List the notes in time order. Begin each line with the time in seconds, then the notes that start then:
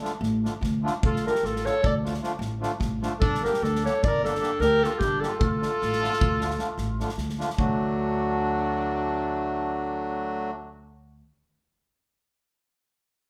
0.00 D3 F3 A3 D4 F4
0.05 snare
0.21 A1, snare
0.43 D3 F3 A3 D4 F4, snare
0.61 D2, kick, snare
0.81 D3 F3 A3 D4 F4
0.87 snare
1.03 D2 F4 A4, kick
1.16 snare
1.23 D3 F3 A3 D4 F4 A#4, snare
1.29 G4
1.35 snare
1.43 A1 F4 A4, snare
1.56 snare
1.62 D3 F3 A3 D4 F4 C#5, snare
1.67 A4
1.83 D2 A4 D5, kick
2.03 D3 F3 A3 D4 F4, snare
2.14 snare
2.21 D3 F3 A3 D4 F4, snare
2.39 A1, snare
2.59 D3 F3 A3 D4 F4, snare
2.80 A1, kick, snare
3.00 D3 F3 A3 D4 F4, snare
3.20 G1 D4 A4, kick
3.35 snare
3.40 D3 G3 A#3 D4 G4 A#4
3.45 G4, snare
3.54 snare
3.62 D2 D4 A4, snare
3.75 snare
3.82 D3 G3 A#3 D4 G4
3.86 A4 C#5, snare
4.03 G1 A#4 D5, kick
4.22 D3 G3 A#3 D4 G4 A4, snare
4.27 D4
4.35 snare
4.40 D3 G3 A#3 D4 G4, snare
4.60 D2 G4 A#4, snare
4.79 D3 G3 A#3 D4 G4 A4
4.84 F4, snare
4.99 G1 G4, kick, snare
5.04 D4
5.20 D3 G3 A#3 D4 G4 A4, snare
5.27 F4
5.40 D2 F4 A4, kick
5.60 D3 F3 A3 D4 F4, snare
5.82 A1, snare
5.93 snare
6.00 D3 F3 A3 D4 F4
6.04 snare
6.13 snare
6.21 D2, kick
6.40 D3 F3 A3 D4 F4, snare
6.50 snare
6.57 D3 F3 A3 D4 F4, snare
6.78 A1, snare
6.99 D3 F3 A3 D4 F4, snare
7.09 snare
7.17 D2, snare
7.29 snare
7.38 D3 F3 A3 D4 F4, snare
7.50 snare
7.56 D2 F#3 A3 D4 F#4, kick